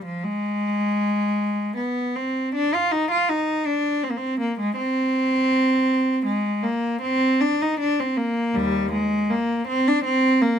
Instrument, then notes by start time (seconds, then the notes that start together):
cello
0.05 F3
0.24 G#3
1.77 B3
2.16 C4
2.55 D4
2.74 F4
2.92 D#4
3.11 F4
3.29 D#4
3.66 D4
4.03 C4
4.10 A#3
4.17 C4
4.40 A#3
4.60 G#3
4.76 C4
6.26 G#3
6.63 A#3
7.02 C4
7.40 D4
7.62 D#4
7.80 D4
8.00 C4
8.18 A#3
8.55 D#2 G3
8.92 G#3
9.30 A#3
9.68 C4
9.88 D4
10.05 C4
10.42 A#3